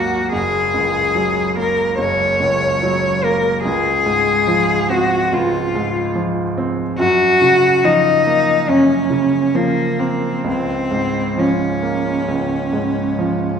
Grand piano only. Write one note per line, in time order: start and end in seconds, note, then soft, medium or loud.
0.00 0.29 G#1 soft
0.00 0.36 D#2 soft
0.00 0.16 F#3 soft
0.00 0.36 A#3 soft
0.32 1.95 F#1 soft
0.74 1.41 C#2 soft
1.15 1.82 F#3 soft
1.56 2.23 A#3 soft
1.98 3.62 F#1 soft
2.40 3.08 C#2 soft
2.82 3.50 F#3 soft
3.24 3.66 A#3 soft
3.65 5.29 C#2 medium
4.06 4.74 G#2 soft
4.47 5.15 F3 soft
4.90 5.58 C4 soft
5.33 6.95 C#2 soft
5.75 6.41 G#2 soft
6.15 6.82 F3 soft
6.58 7.00 C4 soft
6.99 8.64 F#2 medium
7.42 8.09 C#3 soft
7.84 8.52 F3 soft
8.27 8.94 A#3 soft
8.69 10.42 F#2 soft
9.10 9.82 C#3 soft
9.55 10.27 F3 soft
9.99 10.46 A#3 soft
10.44 12.24 C#2 medium
10.91 11.65 G#2 soft
11.37 12.10 F3 soft
11.82 12.55 A#3 soft
12.28 13.60 C#2 soft
12.73 13.45 G#2 soft
13.19 13.60 F3 soft